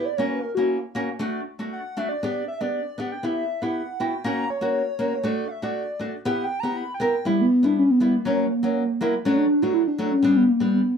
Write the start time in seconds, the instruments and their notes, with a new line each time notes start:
0.05 soft synth lead D5
0.17 nylon-string guitar A#3 C#4 F#4, soft synth lead C#5
0.29 soft synth lead B4
0.41 soft synth lead A#4
0.55 nylon-string guitar A#3 C#4 E4, soft synth lead F#4
0.95 nylon-string guitar A#3 C#4 F#4
1.19 nylon-string guitar A3 D4 F#4
1.59 nylon-string guitar A3 D4 F#4
1.73 soft synth lead F#5
1.97 nylon-string guitar A3 D4 F#4, soft synth lead E5
2.09 soft synth lead D5
2.23 nylon-string guitar B3 D4 G4
2.48 soft synth lead E5
2.61 nylon-string guitar B3 D4 G4, soft synth lead D5
2.98 nylon-string guitar B3 D4 G4, soft synth lead F#5
3.12 soft synth lead G5
3.23 nylon-string guitar B3 E4 G4, soft synth lead E5
3.62 nylon-string guitar B3 E4 G4, soft synth lead F#5
4.00 nylon-string guitar B3 E4 F#4, soft synth lead G5
4.24 nylon-string guitar A#3 C#4 F#4, soft synth lead A#5
4.50 soft synth lead C#5
4.61 nylon-string guitar A#3 C#4 F#4
4.99 nylon-string guitar A#3 C#4 F#4
5.23 nylon-string guitar A3 D4 F#4, soft synth lead D5
5.48 soft synth lead E5 F#5
5.62 nylon-string guitar A3 D4 F#4, soft synth lead D5
5.99 nylon-string guitar A3 D4 F#4
6.25 nylon-string guitar B3 E4 G4, soft synth lead F#5
6.43 soft synth lead G5
6.59 nylon-string guitar B3, soft synth lead A#5
6.64 nylon-string guitar E4 G4
6.76 soft synth lead B5
6.94 soft synth lead G5
7.00 nylon-string guitar B3 E4 A#4
7.25 nylon-string guitar G3 B3 E4, soft synth lead G3
7.41 soft synth lead B3
7.63 nylon-string guitar G3 B3 E4, soft synth lead D4
7.79 soft synth lead C#4
7.90 soft synth lead B3
8.00 nylon-string guitar G3 B3 E4
8.16 soft synth lead A#3
8.25 nylon-string guitar F#3 A#3 C#4
8.63 nylon-string guitar F#3 A#3 C#4
9.01 nylon-string guitar F#3 A#3 E4
9.25 nylon-string guitar F#3 A3 D4, soft synth lead C#4
9.37 soft synth lead D4
9.62 nylon-string guitar F#3 A3 D4, soft synth lead F#4
9.74 soft synth lead E4
9.87 soft synth lead D4
9.98 nylon-string guitar F#3 A3 D4
10.12 soft synth lead C#4
10.23 nylon-string guitar G3 B3 D4
10.36 soft synth lead B3
10.49 soft synth lead A#3
10.60 nylon-string guitar G3 B3 D4
10.74 soft synth lead B3